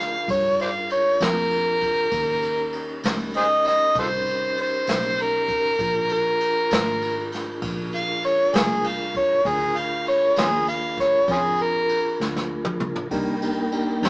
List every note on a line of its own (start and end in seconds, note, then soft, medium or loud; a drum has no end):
0.00 0.26 D2 medium
0.00 2.10 D4 medium
0.00 2.10 F4 medium
0.00 2.10 G#4 medium
0.00 2.10 A#4 medium
0.00 0.27 F5 medium
0.00 snare soft
0.28 1.18 G2 medium
0.28 0.59 C#5 medium
0.28 kick loud
0.28 ride medium
0.59 0.69 C5 medium
0.59 0.70 D5 medium
0.59 0.90 F5 medium
0.59 ride medium
0.90 1.24 C#5 medium
0.90 ride medium
1.20 2.10 F2 medium
1.20 3.02 A#4 loud
1.20 snare loud
1.20 ride medium
1.51 ride medium
1.81 kick medium
1.81 ride medium
2.11 3.01 D#2 medium
2.11 5.76 C#4 medium
2.11 5.76 D#4 medium
2.11 5.76 G4 medium
2.11 5.76 A#4 medium
2.11 kick loud
2.11 ride medium
2.42 ride medium
2.72 ride medium
3.03 3.93 C#2 medium
3.03 snare loud
3.03 ride medium
3.34 3.45 G#4 medium
3.34 3.44 C5 medium
3.34 3.66 D#5 medium
3.34 ride medium
3.65 3.96 D#5 loud
3.65 snare soft
3.65 ride medium
3.95 4.85 C2 medium
3.95 kick loud
3.95 ride medium
3.99 4.07 F4 medium
3.99 4.08 A4 medium
3.99 4.57 C5 loud
4.26 ride medium
4.57 5.23 C5 medium
4.57 ride medium
4.87 5.77 B1 medium
4.87 snare loud
4.87 ride medium
5.18 6.09 A#4 medium
5.18 ride medium
5.48 kick medium
5.48 ride soft
5.79 6.68 A#1 medium
5.79 9.42 D4 medium
5.79 9.42 F4 medium
5.79 9.42 G#4 medium
5.79 9.42 A#4 medium
5.79 kick loud
5.79 ride medium
6.09 7.29 A#4 loud
6.09 ride medium
6.40 ride medium
6.71 7.60 G#1 medium
6.71 snare loud
6.71 ride medium
7.02 ride medium
7.32 snare soft
7.32 ride medium
7.62 8.51 A#1 medium
7.62 kick loud
7.62 snare soft
7.62 ride medium
7.92 8.24 F5 loud
7.92 ride medium
8.23 8.57 C#5 medium
8.23 ride medium
8.53 9.42 C2 medium
8.53 8.88 G#4 medium
8.53 snare loud
8.53 ride medium
8.84 9.15 F5 medium
8.84 ride medium
9.15 9.49 C#5 medium
9.15 kick medium
9.15 ride medium
9.45 10.34 D2 medium
9.45 13.07 D4 medium
9.45 13.08 F4 medium
9.45 13.08 G#4 medium
9.45 9.78 G#4 medium
9.45 13.08 A#4 medium
9.45 kick loud
9.45 ride medium
9.76 10.06 F5 medium
9.76 ride medium
10.07 10.37 C#5 medium
10.07 ride medium
10.36 11.26 D#2 medium
10.36 10.47 C#4 medium
10.36 10.46 F4 medium
10.36 10.67 G#4 medium
10.36 snare loud
10.36 ride medium
10.67 10.97 F5 medium
10.67 ride medium
10.97 11.29 C#5 medium
10.97 kick medium
10.97 snare soft
10.97 ride medium
11.28 12.17 F2 medium
11.28 11.39 C#4 medium
11.28 11.40 F4 medium
11.28 11.63 G#4 medium
11.28 kick loud
11.28 ride medium
11.58 12.19 A#4 medium
11.58 ride soft
11.89 ride medium
12.20 13.08 D2 medium
12.20 snare medium
12.36 snare medium
12.65 mid tom medium
12.80 mid tom medium
12.96 floor tom medium
13.11 13.99 C2 medium
13.11 14.09 A#3 medium
13.11 13.34 D4 medium
13.11 14.09 D#4 medium
13.11 13.34 D#4 medium
13.11 13.34 G4 medium
13.11 14.09 A#4 medium
13.11 13.35 A#4 medium
13.11 14.09 G5 medium
13.11 kick loud
13.11 ride medium
13.41 13.64 D4 medium
13.41 13.64 D#4 medium
13.41 13.65 G4 medium
13.41 13.65 A#4 medium
13.41 ride medium
13.72 13.95 D4 medium
13.72 13.95 D#4 medium
13.72 13.95 G4 medium
13.72 13.95 A#4 medium
13.72 ride medium
14.01 14.09 F2 medium
14.01 14.09 D4 medium
14.01 14.09 D#4 medium
14.01 14.09 G4 medium
14.01 14.09 A#4 medium
14.01 snare loud
14.01 ride medium